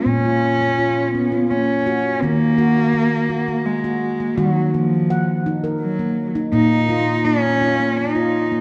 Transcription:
X:1
M:3/4
L:1/16
Q:1/4=84
K:Ebm
V:1 name="Handpan"
D F2 D F2 D F B,2 G2 | B,2 G2 B,2 G B,2 G2 B, | G2 B,2 g2 E B2 B,2 E | B,2 F2 B,2 F B,2 F2 B, |]
V:2 name="Handpan" clef=bass
B,,8 z4 | E,8 z4 | E,8 z4 | B,,8 z4 |]
V:3 name="Cello"
D6 C2 D4 | B,8 A,4 | G,2 F,4 z2 G,3 z | E4 D4 E4 |]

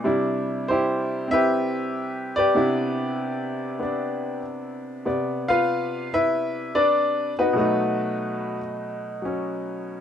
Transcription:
X:1
M:4/4
L:1/8
Q:"Swing" 1/4=96
K:C
V:1 name="Upright piano"
z2 [EGc]2 [GBe]3 [GBd]- | [GBd]6 z2 | z [FBf]2 [EBe]2 [DBd]2 [B,_E^FB]- | [B,_E^FB]3 z4 z |]
V:2 name="Upright piano"
[C,G,DE]4 [CE]4 | [C,B,DE]4 [B,D]4 | [C,B,d]8 | [B,,^F,A,^D]4- [B,,F,A,D] [F,_D]3 |]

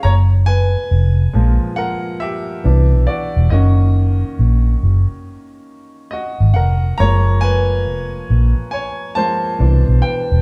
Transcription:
X:1
M:4/4
L:1/16
Q:"Swing 16ths" 1/4=69
K:F#
V:1 name="Grand piano"
[ca]2 [Bg]6 [Af]2 [=G=e]4 [F=d]2 | [Fd]8 z4 [Fd]2 [Af]2 | [ca]2 [Bg]6 [cg]2 [^B=a]4 [=B=g]2 |]
V:2 name="Grand piano" clef=bass
z6 [A,,E,G,]6 [=E,B,=D]2 z2 | [D,A,C]6 z8 z2 | [E,G,A,]2 z8 [E,G,A,]2 [B,,=E,=D]2 z2 |]
V:3 name="Fingered electric bass" clef=bass
F,,,4 E,,,2 A,,, z4 z =C,, B,,, z =E,,, | F,,,4 A,,,2 F,,, z6 G,,, E,,,2 | F,,,4 E,,,2 A,,, z4 z =C,, B,,, z =E,,, |]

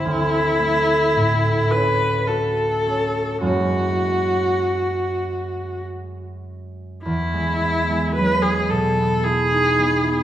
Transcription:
X:1
M:3/4
L:1/16
Q:1/4=54
K:Emix
V:1 name="Viola"
E6 B2 A4 | F8 z4 | E4 B G A2 G4 |]
V:2 name="Harp"
[D,,A,D]2 A,2 A,,2 C2 F2 C2 | [F,,G,^A,CE]12 | E,, G, B, G, F, G, B,, B, E ^D B, E |]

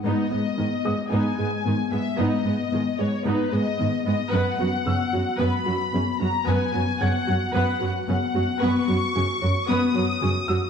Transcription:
X:1
M:4/4
L:1/8
Q:1/4=112
K:G#m
V:1 name="Grand piano"
z3 [dd']4- [dd']- | [dd'] z6 z | z2 e'6 | z2 g'6 |
z6 z e' |]
V:2 name="Violin section"
d4 g3 e | d3 c B d2 d | f4 b3 a | g2 f2 f2 f2 |
c'4 d'4 |]
V:3 name="Synth pluck"
G, B, B, G G, G B, B, | G, B, B, G G, G B, B, | F, B, B, F F, F B, B, | F, B, B, F F, F B, B, |
B, F F c B, c F F |]
V:4 name="Viola section"
[B,D] [G,B,] [D,G,] [G,B,] [B,D] [G,B,] [D,G,] [G,B,] | [B,D] [G,B,] [D,G,] [G,B,] [B,D] [G,B,] [D,G,] [G,B,] | [B,B] [F,F] [C,C] [F,F] [B,B] [F,F] [C,C] [F,F] | [B,B] [F,F] [C,C] [F,F] [B,B] [F,F] [C,C] [F,F] |
[B,B] [F,F] [C,C] [F,F] [B,B] [F,F] [C,C] [F,F] |]
V:5 name="Cello section" clef=bass
G,, G,, G,, G,, G,, G,, G,, G,, | G,, G,, G,, G,, G,, G,, G,, G,, | F,, F,, F,, F,, F,, F,, F,, F,, | F,, F,, F,, F,, F,, F,, F,, F,, |
F,, F,, F,, F,, F,, F,, F,, F,, |]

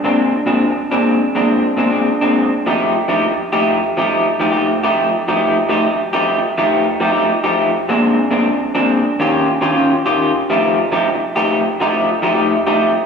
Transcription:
X:1
M:4/4
L:1/16
Q:"Swing" 1/4=92
K:Fdor
V:1 name="Clean electric guitar"
[B,,A,CD] z [B,,A,CD] z2 [B,,A,CD] z2 [B,,A,CD] z [B,,A,CD] [B,,A,CD] z [B,,A,CD] z2 | [F,=A,EG] z [F,A,EG] z2 [F,A,EG] z2 [F,A,EG] z [F,A,EG] [F,A,EG] z [F,A,EG] z2 | [F,=A,EG] z [F,A,EG] z2 [F,A,EG] z2 [F,A,EG] z [F,A,EG] [F,A,EG] z [F,A,EG] z2 | [B,,A,CD] z [B,,A,CD] z2 [B,,A,CD] z2 [E,_DFG] z [E,DFG] [E,DFG] z [E,DFG] z2 |
[F,=A,EG] z [F,A,EG] z2 [F,A,EG] z2 [F,A,EG] z [F,A,EG] [F,A,EG] z [F,A,EG] z2 |]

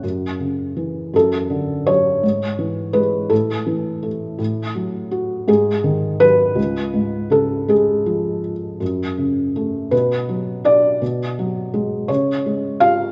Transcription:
X:1
M:6/8
L:1/8
Q:3/8=55
K:F#m
V:1 name="Felt piano"
z3 A2 c- | c2 B A2 z | z3 G2 B- | B2 A G2 z |
z3 B2 d | z3 c2 ^e |]
V:2 name="Felt piano" clef=bass
F,, C, E, F,, D, F, | G,, E, G, A,, E, A, | A,, F, F G,, ^D, F, | C,, G,, C, G, ^E,2 |
F,, C, A, B,, F, D | B,, F, G, C, G, ^E |]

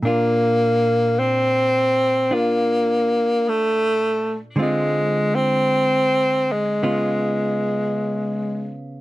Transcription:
X:1
M:4/4
L:1/16
Q:"Swing" 1/4=53
K:Bb
V:1 name="Hollow-body jazz guitar"
[B,,DF]8 [DF]8 | [D,_A,CF]8 [_D,_CF]8 |]
V:2 name="Tenor saxophone"
B,4 C4 B,4 A,3 z | _A,2 C4 A,8 z2 |]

